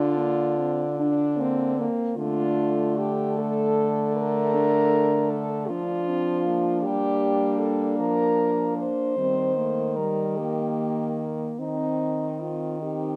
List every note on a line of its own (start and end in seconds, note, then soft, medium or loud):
0.00 1.86 D3 medium
0.00 0.19 D4 medium
0.00 0.96 D4 medium
0.00 1.76 F4 loud
0.17 0.60 A#3 medium
0.59 0.87 C4 medium
0.99 1.39 D4 medium
0.99 1.42 D4 medium
1.37 1.79 A#3 medium
1.37 1.81 C4 medium
1.78 2.18 A#3 medium
1.78 2.17 C4 medium
2.16 5.65 D3 medium
2.16 4.56 A3 medium
2.16 3.09 D4 medium
2.16 2.99 F4 loud
2.98 3.37 G4 loud
3.38 5.73 A3 medium
3.38 4.15 A4 loud
4.16 5.31 A#4 loud
4.55 5.44 D4 medium
5.30 5.70 A4 loud
5.68 6.87 F3 medium
5.68 9.13 D4 medium
5.68 6.11 D4 medium
5.68 6.81 F4 loud
6.09 6.48 C4 medium
6.46 9.20 A#3 medium
6.82 8.02 G3 medium
6.82 7.61 G4 loud
7.59 7.98 A4 loud
7.99 8.91 F3 medium
7.99 8.76 A#4 loud
8.78 9.97 C5 loud
9.18 11.55 D#3 medium
9.18 9.56 G3 medium
9.18 9.58 C4 medium
9.56 9.98 A3 medium
9.56 9.96 A#3 medium
9.96 10.39 G3 medium
9.96 10.40 G3 medium
9.96 10.39 A#4 medium
10.37 11.31 A#3 medium
10.37 11.61 A#3 medium
10.37 11.31 G4 medium
11.59 13.16 D#3 medium
11.59 12.54 C4 medium
11.59 12.82 C4 medium
11.59 12.42 D#4 medium
12.41 12.81 F4 medium
12.81 13.16 C4 soft
12.81 13.16 D#4 medium
12.81 13.16 G4 medium